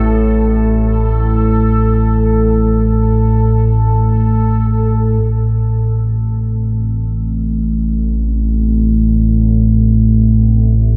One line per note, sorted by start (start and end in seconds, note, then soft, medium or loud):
0.00 5.20 A1 medium
0.00 5.19 A2 medium
0.00 5.25 A4 medium
5.19 10.97 A1 medium
5.19 10.97 A2 medium
5.19 10.97 C4 medium
7.50 10.97 A4 medium
9.39 10.97 E5 medium